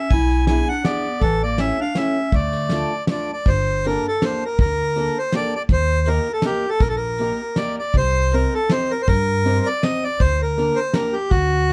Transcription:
Already playing: E5
0.10 B1 E4 G#5, kick, ride
0.31 ride
0.47 B3 D4 E4 G#4 G#5, snare, ride
0.68 D4 F#5
0.84 B3 D4 E4 G#4 D5, snare, ride
1.21 A1 E3 A4, kick, ride
1.43 A#3 D5
1.58 A3 C#4 E4 G4 E5, snare, ride
1.80 D4 F5
1.95 A3 C#4 E4 G4 E5, snare, ride
2.32 D2 A3 D5, kick, ride
2.53 ride
2.69 A3 D4 F4 A4, snare, ride
3.07 A3 D4 F4 A4 D5, snare, ride
3.33 D5
3.45 G1 C5, kick, ride
3.84 A#3 D4 G4 A4 A#4, ride
4.08 A4
4.22 A#3 D4 G4 A4 C5, snare, ride
4.46 A#4
4.58 D2 A#4, kick, ride
4.96 A#3 D4 G4 A4, ride
5.19 C5
5.32 A#3 D4 G4 A4 D5, snare, ride
5.56 D5
5.69 D#2 C5, kick, ride
6.06 A#3 D#4 G4 A#4, ride
6.33 A4
6.42 A#3 D#4 G4 A#4, snare, ride
6.70 A4
6.80 A#1 A#4, kick, ride
6.89 A4
6.96 A#4
7.18 A#3 D#4 G4 A#4, ride
7.56 A#3 D#4 G4 A#4 D5, snare, ride
7.79 D5
7.93 C2, kick, ride
7.97 C5
8.31 C4 D#4 G4 A#4 C5, ride
8.54 A4
8.69 C4 D#4 G4 C5, snare, ride
8.91 A#4
9.02 C5
9.08 G2 A#4, kick, ride
9.45 C4 D#4 G4 C5, ride
9.66 D5
9.83 C4 D#4 G4 C5 D#5, snare, ride
10.04 D5
10.20 D2 C5, kick, ride
10.42 A#4
10.57 A#3 D4 G4 A#4, ride
10.76 C5
10.93 A#3 D4 G4 A#4, snare, ride
11.13 G4
11.30 D2 F#4, kick, ride
11.69 A3, ride

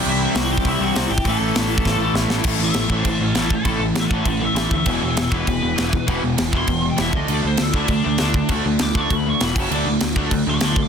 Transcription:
Already playing: C3 E3 G3 C4 E4
0.06 C2 E4 E5
0.35 C2 F#4 F#5, snare, open hi-hat
0.51 G4 G5
0.58 kick
0.65 C2 C3 G3 C4 E4 E5, kick, open hi-hat
0.80 C2 C3 G3 C4 F#4 F#5
0.94 C2 C3 E3 G3 C4, snare, open hi-hat
0.98 G3 C4 E4
1.10 G#1 G4 G5
1.18 kick
1.25 A1 A2 E3 A4, kick, open hi-hat
1.29 A3 C#4 E4 A5
1.40 A1
1.55 A1, snare, open hi-hat
1.78 kick
1.85 A1, kick, snare
1.98 A1 A3
2.02 A2 E3
2.14 A1 A2 E3, snare
2.18 A3
2.29 A1 E3 A3 C#4 E4, snare
2.33 A2 E3
2.44 A1 A2 E3 A3 C#4 E4, kick, crash
2.48 A4
2.58 A1 A2
2.62 E3 C#5 E5
2.74 A1 A2 E3, snare, crash
2.79 C#5 E5
2.90 A1 A2 E3 A3, kick
2.96 A4 C5
3.05 A1 A2 E3, kick, crash
3.10 A4 C5
3.20 A1 A2 E3
3.24 C#4 A4
3.34 A1 A2 E3 A3, snare, crash
3.38 C#4 A4
3.50 A2 E3, kick
3.55 A4
3.65 A1 A2 E3 A3 C#4, kick, crash
3.69 E4 A4
3.79 A1 A2 E3
3.94 A1 A2 E3, snare, crash
3.99 A4 F#5
4.10 A1 A2 E3 A3 A4, kick
4.15 F#5
4.25 A1 A2 E3 A4 F#5, kick, crash
4.41 A2 E3 C#5 E5
4.54 A1 A2 E3 A3, snare, crash
4.60 C#5 E5
4.71 D2 A2 E3, kick
4.75 C#5 E5
4.86 E1 E2 B2 E3 G#3 B3 E4 G#4, kick, crash
4.92 E4 C#5
5.01 E1 E2 B2
5.05 E4 C#5
5.15 E1 E2 B2, snare, crash
5.22 E4 C#5
5.31 E1 E2 B2 E3 B4, kick
5.47 E1 E2 B2, kick, crash
5.62 E1 E2 B2
5.76 E1 E2 B2 E3, snare, crash
5.93 E2 B2, kick
6.07 E1 E2 B2 E3 G#3 B3 E4, kick, crash
6.12 G#4
6.22 E1 E2 B2
6.37 E1 E2 B2, snare, crash
6.51 E1 E2 B2 E3, kick
6.57 C6
6.67 E1 E2 B2, kick, crash
6.82 E2 B2
6.90 G5
6.97 E1 E2 B2 E3 E5, snare, crash
7.12 D2 D3 A3 D4, kick
7.16 D#5
7.28 D2 D3 A3 D4, crash
7.32 F#4 A4 D5
7.42 D2 D3 A3
7.47 C5
7.57 D2 D3 A3, snare, crash
7.62 A4
7.73 D2 D3 A3 D4 E4, kick
7.88 D2 D3 A3 D4, kick, crash
8.04 D2 D3 A3
8.18 D2 D3 A3 D4, snare, crash
8.34 D3 A3, kick
8.49 D2 D3 A3 D4, kick, crash
8.53 D4 F#4 A4
8.65 D2 D3 A3
8.79 D2 D3 A3, snare, crash
8.83 D6
8.95 D2 D3 A3 D4, kick
9.01 C#6
9.10 D2 D3 A3, kick, crash
9.15 B5
9.26 D3 A3 C#6
9.40 E1 E2 B2 E3 B5, snare, crash
9.55 F#1 F#2 C#3 F#3, kick, crash
9.60 A5
9.71 D2 D3 F#3 A3 D4 F#4 D5, crash
9.76 D6
9.85 D2 D3 A3
10.00 D2 D3 A3, snare, crash
10.16 D2 D3 A3 D4, kick
10.31 D2 D3 A3, kick, crash
10.47 D2 D3 A3 F#5 D6
10.60 D2 D3 A3 D4 A5, snare, crash
10.65 C6
10.76 D3 A3, kick
10.83 D6

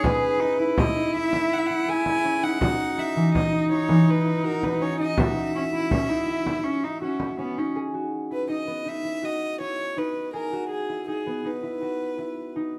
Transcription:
Already playing: C#4 D#4 G#4
0.04 G#4 B4, frame drum
0.23 frame drum
0.40 D#4 E4, frame drum
0.59 E4
0.78 D#5, frame drum
0.96 D#4
1.15 E4 E5
1.33 E4, frame drum
1.53 F#5
1.58 E5
1.66 E4 F#5
1.88 G#4 G#5
2.06 frame drum
2.25 C#4
2.43 D#4 F#5
2.61 D#4 F#4, frame drum
2.79 frame drum
2.98 E4 E5, frame drum
3.16 E3
3.35 D#5, frame drum
3.53 D#4
3.72 E4 C#5
3.89 E3, frame drum
4.10 B4
4.26 E4
4.44 F#4 A#4
4.63 B4, frame drum
4.81 C#4 C#5
4.99 D#4 D#5
5.17 F#4 E5, frame drum
5.54 C#4 E4
5.73 E4
5.91 C#4, frame drum
6.09 D#4 E4
6.27 E4, frame drum
6.46 E4, frame drum
6.64 C#4, frame drum
6.83 D#4 E4
7.01 C#4 F#4
7.20 frame drum
7.39 B3 C#4
7.57 C#4 D#4
7.76 G#4
7.94 F#4
8.31 E4 B4
8.49 D#4 D#5
8.67 B3
8.86 D#4 E5
9.04 E4
9.23 F#4 D#5
9.60 E4 C#5
9.97 D#4 B4
10.33 G#4 A#4
10.52 F#4
10.70 G#4
10.89 E4
11.08 D#4 G#4
11.26 B3
11.45 D#4 B4
11.63 E4
11.82 F#4
12.18 E4
12.56 D#4

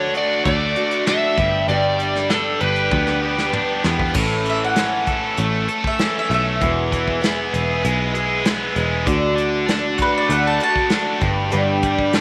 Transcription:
Already playing: D2 D3 A3 D4 F#4 A4 C#5
0.14 F#4 D5, closed hi-hat
0.45 D2 D3 A3 D4 F#4 D5, kick, closed hi-hat
0.76 A3 D4 F#4, closed hi-hat
0.91 closed hi-hat
1.07 D3 A3 D4 F#4 E5, snare, closed hi-hat
1.37 G1 G2 G3 B3 D4 G4 B4, kick, closed hi-hat
1.68 G1 G2 D3 G3 B3 D4 G4 D5, closed hi-hat
1.98 G3, closed hi-hat
2.15 snare
2.29 G3 B3 D4 G4 A4, snare, closed hi-hat
2.60 G1 G4 B4, closed hi-hat
2.76 closed hi-hat
2.90 D2 G3 B3 D4 G4, kick, high tom
3.07 snare
3.22 G3 B3 D4 G4
3.38 snare
3.52 G3 B3 D4 G4, mid tom
3.83 E2 G3 A3 B3 D4 G4, snare
3.89 C4 D4
3.95 E4 F4
3.99 G4 A4, kick
4.06 B4 C5
4.11 A1 A2 E3 A3 C#4 E4 A4 D5, kick, crash
4.45 E3, closed hi-hat
4.50 E5
4.64 F#5
4.75 E3 A3 C#4 A4, snare, closed hi-hat
5.07 A4, kick, closed hi-hat
5.36 A1 E3 A3 C#4 A4, closed hi-hat
5.68 A3 C#4 A4, closed hi-hat
5.84 E5, kick
5.99 E3 A3 C#4 A4, snare, closed hi-hat
6.19 E5
6.29 B1 A3 C#4 A4, closed hi-hat
6.34 E5
6.61 E1 E2 B2 E3 G#3 B3 E4 G#4, kick, closed hi-hat
6.91 E3, kick, closed hi-hat
7.08 kick
7.21 E3 G#3 B3 G#4, snare, closed hi-hat
7.53 E1 G#4, closed hi-hat
7.83 B1 E3 G#3 B3 G#4, closed hi-hat
8.14 E3 G#3 B3 G#4, closed hi-hat
8.45 E3 G#3 B3 G#4, snare, closed hi-hat
8.75 E1 E3 G#3 B3 G#4, closed hi-hat
9.06 D2 D3 A3 D4 F#4 A4, kick, closed hi-hat
9.36 D3, closed hi-hat
9.68 D3 A3 D4 F#4, snare, closed hi-hat
9.98 F#4 B4, kick, closed hi-hat
10.18 D5
10.29 D2 D3 A3 D4 F#4 F#5, closed hi-hat
10.47 A5
10.60 A3 D4 F#4 A5, closed hi-hat
10.76 kick
10.90 D3 A3 D4 F#4, snare, closed hi-hat
11.19 G1 G2 G3 B3 D4 G4 B4, kick, closed hi-hat
11.51 G1 G2 D3 G3 B3 D4 G4, closed hi-hat
11.82 G3, kick, closed hi-hat
11.99 kick
12.11 G3 B3 D4 G4, snare, closed hi-hat

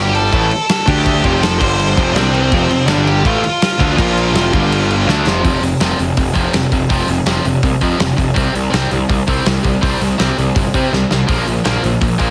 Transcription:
Already playing: G1 G2 D3 G3 G4 G5
0.15 A4 A5, crash
0.33 A1 A2 E3 A3, kick, crash
0.51 crash
0.69 A4 A5, snare, crash
0.86 D2 D3 A3 D4 G4 G5, kick, crash
1.06 kick, crash
1.22 F1 F2 C3 F3, kick, crash
1.43 A4 A5, snare, crash
1.59 G1 G2 D3 G3 C5 C6, kick, crash
1.79 crash
1.97 F1 F2 C3 F3, kick, crash
2.14 C2 C3 G3 C4 D4 D5, snare, crash
2.34 C4 C5, crash
2.52 F1 F2 C3 F3, kick, crash
2.69 F1 F2 C3, crash
2.87 G1 G2 D3 G3 D4 D5, snare, crash
3.07 G4 G5, crash
3.25 A1 A2 E3 A3 F4 F5, kick, crash
3.44 crash
3.62 snare, crash
3.80 D2 D3 A3 D4, kick, crash
3.97 A#1 A#2 F3 A#3, kick, crash
4.17 crash
4.34 F1 F2 C3 F3, snare, crash
4.53 G1 G2 D3 G3, kick, crash
4.72 crash
4.91 crash
5.07 D2 D3 A3 D4, snare
5.26 F1 F2 C3 F3, snare
5.44 F1 F2 C3 F3, kick, open hi-hat
5.61 F1 F2 C3, open hi-hat
5.80 F1 F2 C3 F3, snare, open hi-hat
5.98 F1 F2 C3, open hi-hat
6.17 F1 F2 C3, kick, open hi-hat
6.34 F1 F2 C3 F3, kick, open hi-hat
6.54 F1 F2 C3, snare, open hi-hat
6.72 F1 F2 C3, kick, open hi-hat
6.89 F1 F2 C3 F3, kick, open hi-hat
7.08 F1 F2 C3, open hi-hat
7.26 F1 F2 C3 F3, snare, open hi-hat
7.45 F1 F2 C3, open hi-hat
7.63 C2 F2 C3, kick, open hi-hat
7.81 F2 C3 F3, kick, open hi-hat
7.99 F1 F2 C3, snare, open hi-hat
8.17 F1 F2 C3, kick, open hi-hat
8.34 C2 C3 G3 C4, kick, open hi-hat
8.53 C2 C3 G3, open hi-hat
8.70 C2 C3 G3 C4, snare, open hi-hat
8.90 C2 C3 G3, open hi-hat
9.09 C2 C3 G3, kick, open hi-hat
9.27 C2 C3 G3 C4, kick, open hi-hat
9.45 C2 C3 G3, snare, open hi-hat
9.63 C2 C3 G3, kick, open hi-hat
9.81 C2 C3 G3 C4, kick, open hi-hat
10.01 C2 C3 G3, open hi-hat
10.18 C2 C3 G3 C4, snare, open hi-hat
10.38 C2 C3 G3, open hi-hat
10.55 G1 C3 G3, kick, open hi-hat
10.74 C3 G3 C4, kick, open hi-hat
10.92 C2 C3 G3, snare
11.11 C2 C3 G3, snare
11.27 A#1 A#2 F3 A#3, kick, open hi-hat
11.46 A#1 A#2 F3, open hi-hat
11.64 A#1 A#2 F3 A#3, snare, open hi-hat
11.82 A#1 A#2 F3, open hi-hat
12.01 A#1 A#2 F3, kick, open hi-hat
12.18 A#1 A#2 F3 A#3, kick, open hi-hat

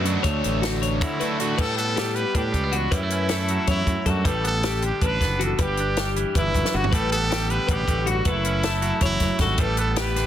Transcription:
Already playing: F#2 D3 A3 F#4 B4
0.04 F#2 B2 F#3 B3 D4, closed hi-hat
0.23 D2 D3 F#3 A3 C#5, kick, closed hi-hat
0.28 D4
0.44 A1, closed hi-hat
0.62 F#4, snare, closed hi-hat
0.82 C#5, closed hi-hat
1.01 D2 E4 F#4, kick, closed hi-hat
1.20 D3 F#3 A3 D4 B4, closed hi-hat
1.39 A2 D3 F#3 A3 D4 F#4, closed hi-hat
1.58 A2 G3 A4 B4, kick, crash
1.78 B3 A4, closed hi-hat
1.96 G3 G4, snare, closed hi-hat
2.15 B4, closed hi-hat
2.35 A2 D4 G4 B4, kick, closed hi-hat
2.52 C#2 A3, kick, closed hi-hat
2.64 B3
2.72 E2 F#4, closed hi-hat
2.78 F#4
2.91 F#2 G3 E4 B4, kick, closed hi-hat
3.03 A3
3.10 C#4, closed hi-hat
3.29 A3 A4, snare, closed hi-hat
3.48 F#3, closed hi-hat
3.67 E2 F#2 E4 C#5, kick, closed hi-hat
3.87 F#2, kick, closed hi-hat
4.06 F#2 G2 A4, kick, closed hi-hat
4.10 F#4
4.25 A1 A2 G3 A4 B4, kick, closed hi-hat
4.44 B3 A4, closed hi-hat
4.63 G3 G4, snare, closed hi-hat
4.82 D3, closed hi-hat
4.87 G4
5.02 A1 D4 B4, kick, closed hi-hat
5.06 B4
5.21 F#1 B3, kick, snare, closed hi-hat
5.39 E2 F#4, closed hi-hat
5.44 A4
5.55 G2 A4, closed hi-hat
5.59 G1 G3 G4 B4, kick
5.77 D4, closed hi-hat
5.97 G3 G4, snare, closed hi-hat
6.16 E3, closed hi-hat
6.35 G1 E2 E4 B4, kick, closed hi-hat
6.55 G1 F#2, kick, closed hi-hat
6.65 snare
6.74 G1 G2 F#4
6.84 floor tom
6.92 A1 A2 G3 A4 B4, kick, closed hi-hat
7.12 B3 A4, closed hi-hat
7.30 G3 G4, snare, closed hi-hat
7.50 D3 B4, closed hi-hat
7.67 A1 B2 B4, kick, closed hi-hat
7.73 G4
7.88 A1 A2, kick, closed hi-hat
8.07 G2 F#4, closed hi-hat
8.25 F#1 F#2 A3 B4, kick, closed hi-hat
8.29 E4
8.45 C#4, closed hi-hat
8.63 A3 A4, snare, closed hi-hat
8.82 F#3, closed hi-hat
9.00 F#1 E2 C#5, kick, closed hi-hat
9.05 E4
9.20 F#1 F#2, kick, snare, closed hi-hat
9.39 G#1 G2 F#4 A4, kick, snare, closed hi-hat
9.58 A1 A2 G3 A4 B4, kick, closed hi-hat
9.77 B3 A4, closed hi-hat
9.96 G3 G4 B4, snare, closed hi-hat
10.16 D3, snare, closed hi-hat

